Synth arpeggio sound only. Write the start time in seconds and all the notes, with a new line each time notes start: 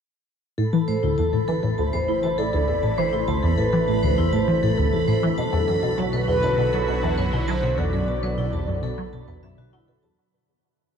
0.58 A2
0.73 E3
0.88 A2
1.03 D2
1.18 E2
1.33 A2
1.48 E3
1.63 A2
1.78 D2
1.93 E2
2.08 A2
2.24 E3
2.38 A2
2.53 D2
2.68 E2
2.83 A2
2.98 E3
3.13 A2
3.28 D2
3.43 E2
3.58 A2
3.73 E3
3.88 A2
4.03 D2
4.18 E2
4.33 A2
4.48 E3
4.63 A2
4.78 D2
4.93 E2
5.08 A2
5.23 E3
5.38 B2
5.53 E2
5.68 F#2
5.83 B2
5.98 F#3
6.13 B2
6.28 E2
6.43 F#2
6.58 B2
6.73 F#3
6.88 B2
7.03 E2
7.18 F#2
7.33 B2
7.48 F#3
7.63 B2
7.78 E2
7.93 F#2
8.08 B2
8.23 F#3
8.38 B2
8.53 E2
8.68 F#2
8.83 B2
8.98 F#3
9.13 B2
9.28 E2
9.43 F#2
9.58 B2
9.73 F#3
9.88 B2
10.03 E2